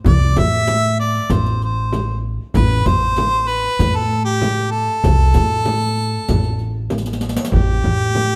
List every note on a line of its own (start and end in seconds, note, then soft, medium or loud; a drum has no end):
0.04 0.32 C2 medium
0.04 0.40 D5 medium
0.04 riq medium
0.04 darbuka dum medium
0.04 frame drum loud
0.36 1.17 A2 medium
0.36 1.00 E5 loud
0.36 riq medium
0.36 frame drum medium
0.36 darbuka dum medium
0.67 riq medium
0.67 darbuka tek medium
0.67 frame drum medium
0.83 darbuka ka soft
0.99 1.34 D5 medium
0.99 riq soft
1.15 riq soft
1.15 darbuka ka soft
1.30 2.37 A1 medium
1.30 1.62 C5 medium
1.30 riq medium
1.30 darbuka dum medium
1.30 frame drum medium
1.46 riq soft
1.62 2.21 C5 medium
1.62 riq soft
1.93 riq soft
1.93 darbuka tek medium
1.93 frame drum medium
2.54 2.82 A1 loud
2.54 2.88 B4 medium
2.54 riq medium
2.54 frame drum medium
2.54 darbuka dum medium
2.86 3.66 A1 medium
2.86 3.50 C5 loud
2.86 riq medium
2.86 frame drum medium
2.86 darbuka dum medium
3.16 riq soft
3.16 darbuka tek medium
3.16 frame drum medium
3.34 darbuka ka soft
3.48 3.98 B4 medium
3.48 riq soft
3.64 riq soft
3.64 darbuka ka soft
3.79 4.86 A2 medium
3.79 riq medium
3.79 frame drum medium
3.79 darbuka dum medium
3.96 4.25 A4 medium
3.96 riq soft
4.11 riq soft
4.25 4.73 G4 medium
4.42 riq soft
4.42 darbuka tek medium
4.42 frame drum medium
4.71 6.90 A4 medium
5.04 5.31 C2 medium
5.04 riq medium
5.04 frame drum medium
5.04 darbuka dum medium
5.34 6.15 A2 loud
5.34 riq medium
5.34 frame drum medium
5.34 darbuka dum medium
5.65 riq soft
5.65 darbuka tek medium
5.65 frame drum medium
5.81 riq soft
5.97 riq soft
5.97 darbuka ka soft
6.13 riq soft
6.13 darbuka ka soft
6.28 7.36 A1 medium
6.28 riq medium
6.28 frame drum medium
6.28 darbuka dum medium
6.43 riq soft
6.43 darbuka ka soft
6.59 riq soft
6.59 darbuka ka soft
6.90 riq soft
6.90 darbuka tek medium
6.90 frame drum medium
6.98 riq medium
7.06 riq medium
7.06 darbuka ka medium
7.13 riq medium
7.21 riq medium
7.21 darbuka tek medium
7.29 riq medium
7.36 riq medium
7.36 darbuka ka medium
7.45 riq medium
7.52 7.80 A1 medium
7.52 8.36 G4 medium
7.52 frame drum medium
7.52 darbuka dum medium
7.84 8.36 A2 medium
7.84 frame drum medium
7.84 darbuka dum medium
8.15 darbuka tek medium
8.15 frame drum medium